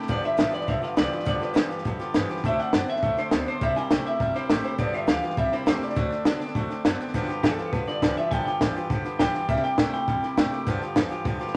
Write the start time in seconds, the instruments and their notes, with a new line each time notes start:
0.02 snare
0.08 upright bass G1, steel-string acoustic guitar G2 D3 F3 B3 F4 G4, clean electric guitar D5, kick, snare
0.23 steel-string acoustic guitar F3 B3 F4 G4, clean electric guitar E5, snare
0.37 upright bass A1, steel-string acoustic guitar G2 D3 F3 B3 F4 G4, clean electric guitar E3, snare, hi-hat pedal
0.51 steel-string acoustic guitar F3 B3 F4 G4, clean electric guitar D5, muted upright bass stroke, snare
0.61 snare
0.67 upright bass B1, clean electric guitar G2 D3 E5, steel-string acoustic guitar F3 B3 F4 G4, kick, snare
0.82 steel-string acoustic guitar F3 B3 F4 G4, clean electric guitar F5, muted upright bass stroke, snare
0.97 upright bass C2, steel-string acoustic guitar G2 D3 F3 B3 F4 G4, clean electric guitar E3 D5, snare, hi-hat pedal
1.11 steel-string acoustic guitar F3 B3 F4 G4, snare
1.19 snare
1.25 upright bass D2, steel-string acoustic guitar G2 D3 F3 B3 F4 G4, clean electric guitar D5, kick, snare
1.39 steel-string acoustic guitar F3 B3 F4 G4, clean electric guitar B4, muted upright bass stroke, snare
1.53 upright bass E2, steel-string acoustic guitar G2 D3 F3 B3 F4 G4, clean electric guitar E3, snare, hi-hat pedal
1.69 steel-string acoustic guitar F3 B3 F4 G4, muted upright bass stroke, snare
1.78 snare
1.85 upright bass F2, clean electric guitar G2 D3, steel-string acoustic guitar F3 B3 F4 G4, kick, snare
1.99 steel-string acoustic guitar F3 B3 F4 G4, muted upright bass stroke, snare
2.14 steel-string acoustic guitar G2 D3 F3 B3 F4 G4, upright bass G2, clean electric guitar E3, snare, hi-hat pedal
2.29 steel-string acoustic guitar F3 B3 F4 G4, snare
2.37 snare
2.43 upright bass D2, steel-string acoustic guitar D3 F#3 C4 D4 A4, clean electric guitar A3 E5, kick, snare
2.58 steel-string acoustic guitar C4 D4 A4, clean electric guitar F#5, muted upright bass stroke, snare
2.73 upright bass F#2, steel-string acoustic guitar D3 F#3 C4 D4 A4, clean electric guitar B3, snare, hi-hat pedal
2.88 steel-string acoustic guitar C4 D4 A4, clean electric guitar E5, snare
2.96 snare
3.02 upright bass E2, clean electric guitar D3 A3, steel-string acoustic guitar F#3 C4 D4 A4, kick, snare
3.17 steel-string acoustic guitar C4 D4 A4, clean electric guitar C5, muted upright bass stroke, snare
3.31 upright bass D2, steel-string acoustic guitar D3 F#3 C4 D4 A4, clean electric guitar B3, snare, hi-hat pedal
3.46 steel-string acoustic guitar C4 D4 A4, clean electric guitar C5, snare
3.61 upright bass C2, steel-string acoustic guitar C3 G3 A#3 E4 G4, clean electric guitar E5, kick, snare
3.76 steel-string acoustic guitar A#3 E4 G4, clean electric guitar G5, snare
3.90 upright bass A#1, steel-string acoustic guitar C3 G3 A#3 E4 G4, clean electric guitar A3, snare, hi-hat pedal
4.05 steel-string acoustic guitar A#3 E4 G4, clean electric guitar E5, muted upright bass stroke, snare
4.20 upright bass G1, clean electric guitar C3, steel-string acoustic guitar G3 A#3 E4 G4, kick, snare
4.34 steel-string acoustic guitar A#3 E4 G4, clean electric guitar C5, snare
4.50 upright bass A1, steel-string acoustic guitar C3 G3 A#3 E4 G4, clean electric guitar A3, snare, hi-hat pedal
4.64 steel-string acoustic guitar A#3 E4 G4, clean electric guitar C5, snare
4.78 upright bass B1, steel-string acoustic guitar G2 D3 F3 B3 F4 G4, clean electric guitar D5, kick, snare
4.93 steel-string acoustic guitar F3 B3 F4 G4, clean electric guitar E5, snare
5.07 upright bass D2, steel-string acoustic guitar G2 D3 F3 B3 F4 G4, clean electric guitar E3 F5, snare, hi-hat pedal
5.22 steel-string acoustic guitar F3 B3 F4 G4, snare
5.30 snare
5.37 upright bass C2, clean electric guitar C3 E5, steel-string acoustic guitar G3 A#3 E4 G4, kick, snare
5.52 steel-string acoustic guitar A#3 E4 G4, clean electric guitar C5, muted upright bass stroke, snare
5.66 upright bass E2, steel-string acoustic guitar C3 G3 A#3 E4 G4, clean electric guitar A3 C5, snare, hi-hat pedal
5.82 steel-string acoustic guitar A#3 E4 G4, clean electric guitar D5, muted upright bass stroke, snare
5.90 snare
5.96 upright bass D2, steel-string acoustic guitar D3 F#3 C4 D4 A4, clean electric guitar A3, kick, snare
6.10 steel-string acoustic guitar C4 D4 A4, snare
6.25 upright bass C2, steel-string acoustic guitar D3 F#3 C4 D4 A4, clean electric guitar B3, snare, hi-hat pedal
6.40 steel-string acoustic guitar C4 D4 A4, muted upright bass stroke, snare
6.48 snare
6.55 upright bass E2, clean electric guitar D3 A3, steel-string acoustic guitar F#3 C4 D4 A4, kick, snare
6.70 steel-string acoustic guitar C4 D4 A4, muted upright bass stroke, snare
6.85 upright bass F#2, steel-string acoustic guitar D3 F#3 C4 D4 A4, clean electric guitar B3, snare, hi-hat pedal
7.00 steel-string acoustic guitar C4 D4 A4, muted upright bass stroke, snare
7.07 snare
7.14 steel-string acoustic guitar G2 D3 F3 B3 F4 G4, upright bass G2, kick, snare
7.22 snare
7.28 steel-string acoustic guitar F3 B3 F4 G4, muted upright bass stroke, snare
7.43 upright bass F2, steel-string acoustic guitar G2 D3 F3 B3 F4 G4, clean electric guitar E3 A4, kick, snare, hi-hat pedal
7.58 steel-string acoustic guitar F3 B3 F4 G4, muted upright bass stroke, snare
7.73 upright bass D2, clean electric guitar G2 D3 B4, steel-string acoustic guitar F3 B3 F4 G4, kick, snare
7.87 steel-string acoustic guitar F3 B3 F4 G4, clean electric guitar D5, muted upright bass stroke, snare
8.02 upright bass C2, steel-string acoustic guitar G2 D3 F3 B3 F4 G4, clean electric guitar E3, kick, snare, hi-hat pedal
8.16 steel-string acoustic guitar F3 B3 F4 G4, clean electric guitar E5, muted upright bass stroke, snare
8.31 upright bass B1, steel-string acoustic guitar G2 D3 F3 B3 F4 G4, clean electric guitar G5, kick, snare
8.46 steel-string acoustic guitar F3 B3 F4 G4, clean electric guitar G5, muted upright bass stroke, snare
8.61 upright bass A1, steel-string acoustic guitar G2 D3 F3 B3 F4 G4, clean electric guitar E3, kick, snare, hi-hat pedal
8.75 steel-string acoustic guitar F3 B3 F4 G4, snare
8.90 upright bass G1, clean electric guitar G2 D3, steel-string acoustic guitar F3 B3 F4 G4, kick, snare
9.04 steel-string acoustic guitar F3 B3 F4 G4, snare
9.19 upright bass B1, steel-string acoustic guitar G2 D3 F3 B3 F4 G4, clean electric guitar E3 G5, kick, snare, hi-hat pedal
9.34 steel-string acoustic guitar F3 B3 F4 G4, muted upright bass stroke, snare
9.49 upright bass C2, steel-string acoustic guitar C3 G3 A#3 E4 G4, clean electric guitar E5, kick, snare
9.56 snare
9.63 steel-string acoustic guitar A#3 E4 G4, clean electric guitar G5, snare
9.78 upright bass D2, steel-string acoustic guitar C3 G3 A#3 E4 G4, clean electric guitar A3, kick, snare, hi-hat pedal
9.93 steel-string acoustic guitar A#3 E4 G4, clean electric guitar G5, muted upright bass stroke, snare
10.08 upright bass E2, clean electric guitar C3, steel-string acoustic guitar G3 A#3 E4 G4, kick, snare
10.22 steel-string acoustic guitar A#3 E4 G4, muted upright bass stroke, snare
10.37 upright bass A2, steel-string acoustic guitar C3 G3 A#3 E4 G4, clean electric guitar A3, kick, snare, hi-hat pedal
10.51 steel-string acoustic guitar A#3 E4 G4, muted upright bass stroke, snare
10.66 steel-string acoustic guitar G2 D3 F3 B3 F4 G4, upright bass G2, kick, snare
10.82 steel-string acoustic guitar F3 B3 F4 G4, snare
10.96 upright bass F2, steel-string acoustic guitar G2 D3 F3 B3 F4 G4, clean electric guitar E3, kick, snare, hi-hat pedal
11.10 steel-string acoustic guitar F3 B3 F4 G4, muted upright bass stroke, snare
11.25 upright bass E2, clean electric guitar G2 D3, steel-string acoustic guitar F3 B3 F4 G4, kick, snare
11.39 steel-string acoustic guitar F3 B3 F4 G4, muted upright bass stroke, snare
11.48 snare